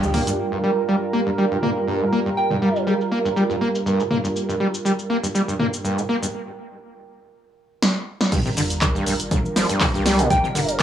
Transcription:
Already playing: G3 D4 F4 G4 A#4 G5
0.03 D2 A2, shaker
0.14 A#3, mid tom, open hi-hat
0.27 G2, closed hi-hat, shaker
0.39 G2 G3 F4 A#4, shaker
0.52 G2, shaker
0.64 G3
0.78 shaker
0.88 G3
1.02 shaker
1.13 A#3
1.27 G2, shaker
1.38 G3, shaker
1.51 G2, shaker
1.63 A#3, mid tom
1.77 shaker
1.88 G2, shaker
2.01 A2, shaker
2.12 A#3
2.26 G2, shaker
2.37 G5, shaker
2.51 G2, mid tom, shaker
2.62 G3
2.76 shaker
2.87 G3, shaker
3.01 shaker
3.12 A#3
3.25 G2, shaker
3.36 G3, shaker
3.50 G2, shaker
3.61 A#3
3.75 shaker
3.86 G2, shaker
3.99 A2, shaker
4.11 A#3, mid tom
4.24 G2, shaker
4.36 shaker
4.49 G2, shaker
4.60 G3
4.74 shaker
4.85 G3, shaker
4.99 shaker
5.10 A#3
5.23 G2, shaker
5.35 G3, shaker
5.48 G2, shaker
5.59 A#3, mid tom
5.74 shaker
5.84 G2, shaker
5.98 A2, shaker
6.09 A#3
6.22 G2, shaker
7.82 snare
8.21 snare
8.32 G1 G2 G3 D4 F4 A#4, kick, closed hi-hat, crash, sub drop, shaker
8.45 C3, shaker
8.57 G1 D3, open hi-hat, shaker
8.70 closed hi-hat, shaker
8.81 kick, clap, closed hi-hat, shaker
8.95 G2, shaker
9.06 A#1 G2, open hi-hat, shaker
9.20 G1, closed hi-hat, shaker
9.31 A2, kick, closed hi-hat, shaker
9.45 shaker
9.56 F1 F3, snare, open hi-hat, shaker
9.69 G2, closed hi-hat, shaker
9.80 C2 G3, kick, clap, open hi-hat, shaker
9.94 G2, shaker
10.06 G3, snare, open hi-hat, shaker
10.19 A#2, closed hi-hat, shaker
10.30 G1 G2 G5, kick, closed hi-hat, shaker
10.44 C3, shaker
10.55 G1 D3, mid tom, open hi-hat, shaker
10.69 closed hi-hat, shaker
10.80 clap

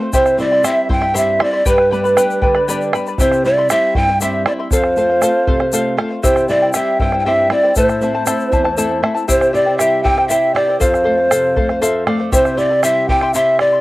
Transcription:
Already playing: C5
0.01 C5 F5
0.13 C3 E4 G4 C5 E5 C6, bombo rim, bombo low, shaker
0.26 bombo rim, shaker
0.38 G3 C4 E4 C5 D5 E5 C6, shaker
0.52 E4 E5 C6, bombo rim
0.63 G3 C4 E4 G4 C5 E5 C6, bombo rim, shaker
0.89 G2 E4 C5 E5 G5 C6, bombo low
1.01 E4 E5 C6, bombo rim
1.14 G3 C4 E4 G4 C5 E5 C6, bombo rim, shaker
1.39 G3 C4 E4 C5 D5 E5 C6, bombo rim
1.44 D5
1.53 E4 E5 C6
1.65 G2 G4 B4 D5 G5 B5, bombo low, shaker
1.78 bombo rim
1.91 G3 B3 D4 B4 D5 G5 B5, bombo rim, shaker
2.04 B4 D5 B5, shaker
2.17 G3 B3 D4 G4 B4 D5 G5 B5, bombo rim, shaker
2.30 shaker
2.42 D3 B4 D5 G5 B5, bombo low
2.54 B4 D5 B5, bombo rim
2.68 G3 B3 D4 G4 B4 D5 G5 B5, shaker
2.81 shaker
2.93 G3 B3 D4 B4 D5 G5 B5, bombo rim, shaker
3.07 B4 D5 B5, shaker
3.18 C3 E4 G4 C5 E5 C6, bombo rim, bombo low, shaker
3.32 bombo rim, shaker
3.44 G3 C4 E4 C5 D5 E5 C6, shaker
3.58 E4 E5 C6, bombo rim
3.70 G3 C4 E4 G4 C5 E5 C6, bombo rim, shaker
3.95 G2 E4 C5 E5 G5 C6, bombo low
4.09 E4 E5 C6
4.20 G3 C4 E4 G4 C5 E5 C6, bombo rim, shaker
4.46 G3 C4 E4 C5 D5 E5 C6, bombo rim
4.59 E4 E5 C6
4.71 F2 A4 C5 F5, bombo rim, bombo low, shaker
4.84 bombo rim
4.97 A3 C4 F4 A4 C5 F5, shaker
5.10 C5 F5, bombo rim
5.21 A3 C4 F4 A4 C5 F5, bombo rim, shaker
5.47 C3 A4 C5 F5, bombo low
5.59 C5 F5, bombo rim
5.72 A3 C4 F4 A4 C5 F5, bombo rim, shaker
5.97 A3 C4 F4 A4 C5 F5, bombo rim
6.10 C5 F5
6.23 C3 E4 G4 C5 E5 G5, bombo rim, bombo low, shaker
6.36 bombo rim, shaker
6.48 G3 C4 E4 C5 D5 E5 G5, shaker
6.62 E4 C5 G5, bombo rim
6.74 G3 C4 E4 G4 C5 E5 G5, bombo rim, shaker
6.99 G2 E4 C5 E5 G5, bombo low
7.12 E4 C5 G5, bombo rim
7.20 G5
7.25 G3 C4 E4 G4 C5 E5 G5
7.50 G3 C4 E4 C5 D5 E5 G5, bombo rim
7.63 E4 C5 G5
7.76 A2 E4 A4 C5 E5 A5, bombo rim, bombo low, shaker
7.89 bombo rim, shaker
8.01 A3 C4 E4 C5 E5 A5, bombo rim, shaker
8.15 E4 C5 A5
8.26 A3 C4 E4 A4 C5 E5 A5, bombo rim, shaker
8.40 shaker
8.52 E2 E4 C5 E5 A5, bombo low, shaker
8.64 E4 C5 A5, bombo rim
8.77 A3 C4 E4 A4 C5 E5 A5, bombo rim, shaker
8.91 bombo rim
9.02 A3 C4 E4 C5 E5 A5, bombo rim
9.15 E4 C5 A5, shaker
9.28 C3 E4 G4 C5 E5 G5, bombo rim, bombo low, shaker
9.41 bombo rim, shaker
9.53 E4 G4 C5 D5 E5 G5, shaker
9.66 E4 C5 G5, bombo rim
9.78 G3 E4 G4 C5 E5 G5, bombo rim, shaker
10.03 E4 G4 C5 E5 G5, bombo low
10.17 E4 C5 G5, bombo rim
10.28 E4 G4 C5 E5 G5, bombo rim, shaker
10.55 E4 G4 C5 D5 E5 G5, bombo rim
10.68 E4 C5 G5
10.80 F2 A4 C5 F5, bombo rim, bombo low, shaker
10.94 bombo rim, shaker
11.04 A3 A4 C5 F5
11.18 C5 F5, bombo rim
11.31 C3 A4 C5 F5, bombo rim, shaker
11.56 A3 A4 C5 F5, bombo low
11.69 C5 F5, bombo rim
11.81 F3 A4 C5 E5 F5, bombo rim, shaker
12.07 A3 A4 C5 D5 F5, bombo rim
12.19 C5 F5
12.32 C3 E4 G4 C5 E5 C6, bombo rim, bombo low, shaker
12.45 bombo rim, shaker
12.57 E4 G4 C5 D5 E5 C6, shaker
12.70 E4 E5 C6, bombo rim
12.83 G3 E4 G4 C5 E5 C6, bombo rim, shaker
13.08 E4 G4 C5 E5 G5 C6, bombo low
13.21 E4 E5 C6, bombo rim
13.34 E4 G4 C5 E5 C6, bombo rim, shaker
13.59 E4 G4 C5 D5 E5 C6, bombo rim
13.73 E4 E5 C6

